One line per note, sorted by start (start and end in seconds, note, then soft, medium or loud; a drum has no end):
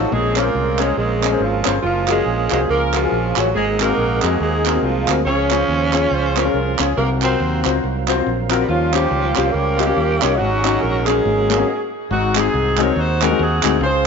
0.00 0.10 F3 medium
0.00 0.15 F#3 medium
0.00 0.10 D#4 medium
0.00 0.10 F4 soft
0.00 0.12 F#4 medium
0.00 0.13 A4 medium
0.11 0.48 A#1 loud
0.11 0.76 A#2 medium
0.11 1.80 G#3 medium
0.11 0.40 G#3 medium
0.11 1.80 A#3 medium
0.11 0.95 C4 medium
0.11 0.37 C#4 medium
0.11 0.36 G#4 medium
0.11 1.79 A#4 medium
0.11 1.79 C5 medium
0.36 0.82 A#3 medium
0.36 0.47 C#4 medium
0.36 0.97 C#4 medium
0.36 1.19 F4 medium
0.36 0.47 G#4 medium
0.36 0.80 A#4 medium
0.36 0.47 A#4 medium
0.36 0.47 C5 medium
0.36 clap medium
0.55 0.91 C2 medium
0.79 0.97 G#3 medium
0.79 0.89 C#4 medium
0.79 0.95 G#4 medium
0.79 0.90 G#4 medium
0.79 0.90 A#4 medium
0.79 0.90 C#5 medium
0.79 clap medium
0.96 1.34 A#1 medium
0.96 1.44 G#3 medium
0.96 1.79 C4 medium
0.96 1.40 C#4 medium
0.96 1.37 G#4 medium
1.23 1.28 C#4 medium
1.23 1.28 G#4 medium
1.23 1.28 A#4 medium
1.23 1.29 D#5 medium
1.23 clap medium
1.31 1.42 C#4 medium
1.31 1.42 G#4 medium
1.31 1.42 A#4 medium
1.31 1.43 C5 medium
1.40 1.62 G#1 medium
1.40 1.76 F3 medium
1.40 1.81 G#3 medium
1.40 1.81 C#4 medium
1.40 1.74 F4 medium
1.65 1.81 G1 medium
1.65 1.75 C#4 medium
1.65 1.76 G#4 medium
1.65 1.76 A#4 medium
1.65 1.76 C5 medium
1.65 clap loud
1.82 2.20 F#1 medium
1.82 3.51 F3 medium
1.82 2.08 F3 medium
1.82 2.65 G#3 medium
1.82 3.51 A#3 medium
1.82 2.65 A#3 medium
1.82 2.06 F4 medium
1.82 3.51 F4 medium
1.82 3.51 G#4 medium
2.08 2.50 G#3 medium
2.08 2.70 C#4 medium
2.08 2.18 F4 medium
2.08 2.70 F4 medium
2.08 2.18 F#4 medium
2.08 2.49 G#4 medium
2.08 2.19 G#4 medium
2.08 2.19 A#4 medium
2.08 clap medium
2.26 2.48 A#1 medium
2.50 2.66 C2 medium
2.50 2.60 G#3 medium
2.50 2.61 F4 medium
2.50 2.61 F#4 medium
2.50 2.67 G#4 medium
2.50 2.61 G#4 medium
2.50 2.62 C5 medium
2.50 clap medium
2.69 3.05 C#2 medium
2.69 2.81 A#3 medium
2.69 3.51 C#4 medium
2.69 2.93 F4 medium
2.69 2.95 A#4 medium
2.93 3.41 F3 medium
2.93 3.51 G#3 medium
2.93 3.51 A#3 medium
2.93 2.99 F4 medium
2.93 3.37 F4 medium
2.93 2.99 F#4 medium
2.93 2.99 G#4 medium
2.93 3.00 A#4 medium
2.93 clap medium
3.02 3.13 F4 medium
3.02 3.13 F#4 medium
3.02 3.14 G#4 medium
3.02 3.14 A#4 medium
3.12 3.33 A#1 medium
3.36 3.52 A1 medium
3.36 3.56 F#3 medium
3.36 3.47 F4 medium
3.36 3.54 F#4 medium
3.36 3.47 F#4 medium
3.36 3.47 G#4 medium
3.36 3.48 C#5 medium
3.36 clap loud
3.54 3.91 G#1 medium
3.54 4.19 G#2 medium
3.54 5.22 G#3 medium
3.54 3.85 G#3 medium
3.54 5.22 A#3 medium
3.54 5.22 C4 medium
3.54 4.37 C4 medium
3.54 3.80 D#4 medium
3.54 5.22 G#4 medium
3.54 3.66 G#4 medium
3.80 4.27 A#3 loud
3.80 3.90 C4 medium
3.80 4.40 D#4 medium
3.80 3.90 F#4 medium
3.80 4.62 F#4 medium
3.80 3.91 G#4 medium
3.80 4.20 A#4 loud
3.80 3.91 A#4 medium
3.80 clap medium
3.97 4.19 A#1 medium
4.21 4.38 F2 medium
4.21 4.33 C4 medium
4.21 4.33 F#4 medium
4.21 4.38 G#4 medium
4.21 4.33 G#4 medium
4.21 4.33 A#4 medium
4.21 clap medium
4.25 4.41 G#3 medium
4.40 4.77 D#2 medium
4.40 4.87 G#3 medium
4.40 4.82 C4 medium
4.40 5.22 D#4 medium
4.40 4.80 G#4 medium
4.65 4.70 C4 medium
4.65 4.71 F#4 medium
4.65 4.71 G#4 medium
4.65 4.72 A#4 medium
4.65 clap medium
4.74 4.85 C4 medium
4.74 4.85 F#4 medium
4.74 4.85 G#4 medium
4.74 4.86 A#4 medium
4.82 5.04 C2 medium
4.82 5.18 F3 medium
4.82 5.23 A#3 medium
4.82 5.23 C4 medium
4.82 5.16 F4 medium
5.08 5.23 D2 medium
5.08 5.18 C4 medium
5.08 5.18 F#4 medium
5.08 5.19 G#4 medium
5.08 5.19 A#4 medium
5.08 clap loud
5.25 5.62 C#2 medium
5.25 5.91 C#3 medium
5.25 6.94 F3 medium
5.25 6.94 C#4 medium
5.25 6.70 C#4 loud
5.25 6.08 F4 medium
5.25 5.32 F#4 medium
5.25 6.08 G#4 medium
5.25 6.94 C5 medium
5.25 5.49 C#5 medium
5.32 6.97 G#4 medium
5.51 5.61 C#4 medium
5.51 5.61 F4 medium
5.51 5.62 G#4 medium
5.51 5.62 C5 medium
5.51 clap medium
5.68 6.05 D#2 medium
5.68 5.92 C5 medium
5.93 6.03 C#4 medium
5.93 6.04 F4 medium
5.93 6.04 G#4 medium
5.93 6.11 C#5 medium
5.93 6.05 C#5 medium
5.93 clap medium
6.11 6.48 C#2 medium
6.11 6.38 F4 medium
6.11 6.78 G#4 medium
6.11 6.38 C5 medium
6.37 6.42 C#4 medium
6.37 6.42 F4 medium
6.37 6.94 F4 medium
6.37 6.42 G#4 medium
6.37 6.80 A#4 loud
6.37 6.43 C5 medium
6.37 clap medium
6.45 6.56 C#4 medium
6.45 6.56 F4 medium
6.45 6.57 G#4 medium
6.45 6.57 A#4 medium
6.54 6.76 C2 medium
6.79 6.94 C#2 medium
6.79 6.89 C#4 medium
6.79 6.90 F4 medium
6.79 6.97 G#4 medium
6.79 6.90 G#4 medium
6.79 6.91 C#5 medium
6.79 clap loud
6.96 7.34 C2 medium
6.96 7.61 C3 medium
6.96 8.65 F#3 medium
6.96 7.09 A#3 medium
6.96 7.03 B3 soft
6.96 7.22 D#4 medium
6.96 7.23 F#4 medium
6.96 8.65 A#4 medium
6.96 7.09 A#4 medium
6.96 8.65 F5 medium
7.02 8.68 C4 medium
7.22 7.32 C4 medium
7.22 7.63 C4 medium
7.22 8.05 D#4 medium
7.22 7.32 F4 medium
7.22 7.33 F#4 medium
7.22 8.05 F#4 medium
7.22 7.33 A#4 medium
7.22 7.63 C5 medium
7.22 clap medium
7.40 7.62 D#2 medium
7.64 7.81 C#2 loud
7.64 7.75 C4 medium
7.64 7.75 F4 medium
7.64 7.75 F#4 medium
7.64 7.76 C5 medium
7.64 clap medium
7.84 8.20 C2 medium
8.07 8.13 C4 medium
8.07 8.13 F4 medium
8.07 8.13 F#4 medium
8.07 8.14 C5 loud
8.07 clap medium
8.16 8.27 C4 medium
8.16 8.27 F4 medium
8.16 8.28 F#4 medium
8.16 8.28 C5 medium
8.27 8.63 A#1 medium
8.49 8.60 C4 medium
8.49 8.61 F4 medium
8.49 8.61 F#4 medium
8.49 8.61 A#4 loud
8.49 clap loud
8.63 8.70 G3 medium
8.67 9.05 D#2 medium
8.67 9.33 D#3 medium
8.67 9.53 F3 medium
8.67 10.36 G3 medium
8.67 8.94 A#3 medium
8.67 10.36 C#4 medium
8.67 8.94 C#4 medium
8.67 10.37 F4 medium
8.67 8.92 F4 medium
8.67 10.37 C5 medium
8.93 9.76 A#3 medium
8.93 9.04 C#4 medium
8.93 9.53 C#4 medium
8.93 9.04 F4 medium
8.93 9.35 G4 loud
8.93 9.04 G4 medium
8.93 9.05 C5 medium
8.93 clap medium
9.11 9.33 C#2 loud
9.36 9.52 C2 medium
9.36 9.46 C#4 medium
9.36 9.47 F4 medium
9.36 9.53 G4 medium
9.36 9.47 G4 medium
9.36 9.47 C5 medium
9.36 clap medium
9.52 9.91 C#2 medium
9.52 10.38 A#3 loud
9.52 9.86 C#4 medium
9.52 9.84 G4 medium
9.52 9.79 A#4 medium
9.77 9.84 C#4 medium
9.77 9.87 F4 medium
9.77 9.84 F4 medium
9.77 9.85 G4 medium
9.77 9.85 D#5 medium
9.77 clap medium
9.85 10.36 A#3 medium
9.85 10.36 C#4 medium
9.85 9.98 C#4 medium
9.85 9.99 F4 medium
9.85 10.21 G4 loud
9.85 9.99 G4 medium
9.85 9.99 C#5 medium
9.97 10.18 D#2 medium
10.20 10.38 C2 medium
10.20 10.32 C#4 medium
10.20 10.39 D#4 medium
10.20 10.33 F4 medium
10.20 10.33 G4 medium
10.20 clap loud
10.24 10.33 C#5 medium
10.36 10.76 G#1 medium
10.36 11.05 G#2 medium
10.36 11.07 F#3 medium
10.36 11.06 D#4 medium
10.36 10.82 F#4 loud
10.41 11.23 F#3 medium
10.41 10.46 C4 soft
10.41 11.06 C#4 medium
10.41 11.24 D#4 medium
10.41 11.23 G#4 medium
10.46 11.23 C#4 medium
10.64 10.75 C#4 medium
10.64 10.75 D#4 medium
10.64 10.75 F#4 medium
10.64 10.76 G#4 medium
10.64 clap medium
10.81 11.19 A#1 medium
10.81 11.07 A#4 medium
11.05 11.93 G#3 medium
11.05 11.18 C#4 medium
11.05 11.89 C#4 medium
11.05 11.89 D#4 medium
11.05 11.18 D#4 medium
11.05 11.18 F#4 medium
11.05 11.92 G#4 medium
11.05 clap medium
11.09 11.19 A#4 medium
11.24 11.62 G#1 medium
11.24 11.65 G#2 medium
11.24 11.68 F#3 medium
11.24 11.68 A#3 medium
11.24 11.68 C#4 medium
11.24 11.68 G#4 medium
11.49 11.55 A#3 medium
11.49 11.56 C#4 medium
11.49 11.56 F#4 medium
11.49 11.56 G#4 medium
11.49 clap medium
11.58 11.67 A#3 medium
11.58 11.68 C#4 medium
11.58 11.68 F#4 medium
11.58 11.68 G#4 medium
12.10 12.47 G#1 loud
12.10 12.75 G#2 medium
12.10 12.35 C4 medium
12.10 12.35 D#4 medium
12.10 12.35 F#4 loud
12.35 12.46 G#3 medium
12.35 12.46 C4 medium
12.35 13.18 C4 medium
12.35 12.96 D#4 medium
12.35 12.46 D#4 medium
12.35 12.46 F#4 medium
12.35 12.46 G#4 medium
12.35 12.79 G#4 loud
12.35 clap loud
12.54 12.90 C2 loud
12.78 12.88 G#3 medium
12.78 12.89 C4 medium
12.78 12.89 D#4 medium
12.78 12.89 F#4 medium
12.78 12.89 A#4 medium
12.78 12.97 C#5 loud
12.78 clap medium
12.96 13.32 D#2 loud
12.96 13.40 D#4 medium
12.96 13.79 F#4 medium
12.96 13.23 C5 loud
13.21 13.26 G#3 medium
13.21 13.27 C4 medium
13.21 13.27 D#4 medium
13.21 13.27 F#4 medium
13.21 13.27 G#4 medium
13.21 13.40 A#4 loud
13.21 clap medium
13.30 13.41 G#3 medium
13.30 13.41 C4 medium
13.30 13.41 D#4 medium
13.30 13.41 F#4 medium
13.30 13.42 G#4 medium
13.39 13.61 D#2 loud
13.39 13.80 C4 medium
13.39 13.80 D#4 medium
13.39 13.82 G#4 loud
13.63 13.79 D2 medium
13.63 13.74 G#3 medium
13.63 13.74 C4 medium
13.63 13.74 D#4 medium
13.63 13.75 F#4 medium
13.63 13.75 G#4 medium
13.63 clap loud
13.81 14.07 C#2 loud
13.81 14.07 C#3 medium
13.81 14.07 F4 medium
13.81 14.07 G#4 medium
13.81 14.07 C5 loud